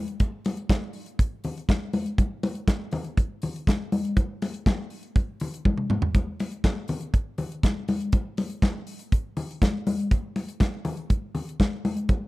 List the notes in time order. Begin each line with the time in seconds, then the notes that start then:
0.08 closed hi-hat
0.20 kick, closed hi-hat, muted conga
0.45 open hi-hat, muted conga
0.57 closed hi-hat
0.69 kick, snare, closed hi-hat, high conga
0.93 open hi-hat
1.06 closed hi-hat
1.19 kick, closed hi-hat
1.44 open hi-hat, low conga
1.58 closed hi-hat
1.69 kick, snare, closed hi-hat, high conga
1.93 open hi-hat, high conga
2.06 closed hi-hat
2.18 kick, closed hi-hat, muted conga
2.43 open hi-hat, muted conga
2.55 closed hi-hat
2.68 kick, snare, closed hi-hat, high conga
2.91 open hi-hat, low conga
3.04 closed hi-hat
3.17 kick, closed hi-hat, muted conga
3.42 open hi-hat, low conga
3.56 closed hi-hat
3.67 kick, snare, closed hi-hat, high conga
3.92 open hi-hat, high conga
4.05 closed hi-hat
4.17 kick, closed hi-hat, muted conga
4.42 open hi-hat, muted conga
4.54 closed hi-hat
4.66 kick, snare, closed hi-hat, high conga
4.90 open hi-hat
5.03 closed hi-hat
5.16 kick, closed hi-hat, muted conga
5.40 open hi-hat, low conga
5.54 closed hi-hat
5.65 kick, high tom, high conga
5.78 mid tom
5.90 mid tom, high conga
6.02 floor tom
6.14 kick, closed hi-hat, muted conga
6.40 open hi-hat, muted conga
6.52 closed hi-hat
6.64 kick, snare, closed hi-hat, high conga
6.88 open hi-hat, low conga
7.01 closed hi-hat
7.14 kick, closed hi-hat
7.38 open hi-hat, low conga
7.52 closed hi-hat
7.63 kick, snare, closed hi-hat, high conga
7.88 open hi-hat, high conga
8.01 closed hi-hat
8.12 kick, closed hi-hat, muted conga
8.37 open hi-hat, muted conga
8.50 closed hi-hat
8.62 kick, snare, closed hi-hat, high conga
8.87 open hi-hat
8.99 closed hi-hat
9.12 kick, closed hi-hat
9.37 open hi-hat, low conga
9.51 closed hi-hat
9.62 kick, snare, closed hi-hat, high conga
9.87 open hi-hat, high conga
9.99 closed hi-hat
10.11 kick, closed hi-hat, muted conga
10.36 open hi-hat, muted conga
10.49 closed hi-hat
10.60 kick, snare, closed hi-hat, high conga
10.85 open hi-hat, low conga
10.97 closed hi-hat
11.10 kick, closed hi-hat, muted conga
11.35 open hi-hat, low conga
11.49 closed hi-hat
11.60 kick, snare, closed hi-hat, high conga
11.85 open hi-hat, high conga
11.97 closed hi-hat
12.09 kick, closed hi-hat, muted conga